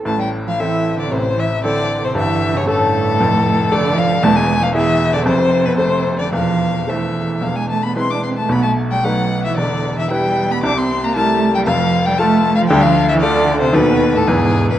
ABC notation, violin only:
X:1
M:4/4
L:1/16
Q:1/4=114
K:Am
V:1 name="Violin"
a g2 f e3 d c2 e2 d3 c | e3 ^c A8 d2 f2 | a ^g2 f e3 d c3 B c3 d | f4 e4 f ^g a b c' d' c' a |
b a2 g ^f3 e d3 e g3 b | d' c'2 _b a3 g f3 g a3 f | g f2 e d3 c B3 A ^G3 B |]